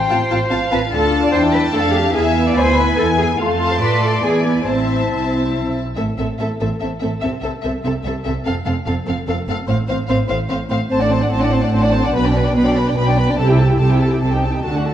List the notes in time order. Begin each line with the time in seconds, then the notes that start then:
Already playing: C5 G5
0.09 A1 C4 F4 F5 A5
0.31 A1 C4 F4 F5 A5
0.51 A1 C4 F4 F5 A5
0.71 A1 C4 F4 B4 F5 A5
0.91 D2 D4 F4 A4 F5 A5
1.22 D5
1.32 E2 E4 C5 G5 A5
1.53 B4
1.74 F2 A3 D4 A4 F5
1.94 G4
2.14 E2 B3 E4 G#4 E5 G#5
2.47 D5
2.56 D2 C5 G#5 B5
2.77 B4
2.97 E2 E4 A4 G#5
3.18 G#4
3.38 F2 A3 F4 A4 F5 A5 C6
3.71 C5
3.81 A2 A3 F4 B4 D5 C6
4.02 A4
4.24 E2 B3 E4 G#4 G#5
4.45 B3
4.66 A1 C4 E4 C5 E5 A5
5.12 C2
5.55 B1
5.96 A1 A2 C4 A4 E5
6.17 A1 A2 C4 A4 E5
6.38 A1 A2 C4 A4 E5
6.60 A1 A2 C4 A4 E5
6.79 A1 A2 C4 A4 E5
7.00 A1 A2 C4 A4 E5
7.21 C2 C3 C4 A4 E5
7.41 C2 C3 C4 A4 E5
7.62 C2 C3 C4 A4 E5
7.84 C2 C3 C4 A4 E5
8.04 C2 C3 C4 A4 E5
8.24 C2 C3 C4 A4 E5
8.45 F1 F2 C4 A4 F5
8.65 F1 F2 C4 A4 F5
8.86 F1 F2 C4 A4 F5
9.06 F1 F2 C4 A4 F5
9.27 F1 F2 C4 A4 F5
9.48 F1 F2 C4 A4 F5
9.67 A1 A2 C4 C5 F5
9.88 A1 A2 C4 C5 F5
10.09 A1 A2 C4 C5 F5
10.29 A1 A2 C4 C5 F5
10.49 A1 A2 C4 C5 F5
10.69 A1 A2 C4 C5 F5
10.89 A1 A2 C4 C5 A5
11.00 D4 D5 F#5
11.11 C4 C5 A5
11.21 D4 D5 F#5
11.31 A1 A2 C4 C5 A5
11.42 D4 D5 F#5
11.52 C4 C5 A5
11.62 D4 D5 F#5
11.72 A1 A2 C4 C5 A5
11.82 D4 D5 F#5
11.92 C4 C5 A5
12.03 D4 D5 F#5
12.13 B1 B2 B3 B4 B5
12.24 D4 D5 G5
12.35 B3 B4 B5
12.45 D4 D5 G5
12.55 B1 B2 B3 B4 B5
12.65 D4 D5 G5
12.76 B3 B4 B5
12.87 D4 D5 G5
12.96 B1 B2 B3 B4 B5
13.07 D4 D5 G5
13.17 B3 B4 B5
13.28 D4 D5 G5
13.37 C2 C3 G4 A4 A5
13.47 E4 G4 G5
13.57 G4 A4 A5
13.69 E4 G4 G5
13.79 C2 C3 G4 A4 A5
13.90 E4 G4 G5
14.00 G4 A4 A5
14.10 E4 G4 G5
14.21 C2 C3 C4 A4 A5
14.32 D#4 G4 G5
14.43 C4 A4 A5
14.53 D#4 G4 G5
14.64 D2 D3 F#4 A4 A5
14.75 D4 F#4 F#5
14.85 F#4 A4 A5